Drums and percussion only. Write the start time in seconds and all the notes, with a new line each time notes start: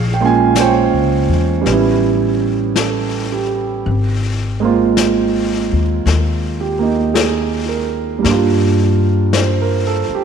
0.55 brush sweep, snare, hi-hat pedal
1.66 brush sweep, snare
2.76 brush sweep, snare, hi-hat pedal
3.86 brush sweep
4.97 brush sweep, snare, hi-hat pedal
6.07 brush sweep, snare
7.15 brush sweep, snare, hi-hat pedal
8.24 brush sweep, snare
9.33 brush sweep, snare, hi-hat pedal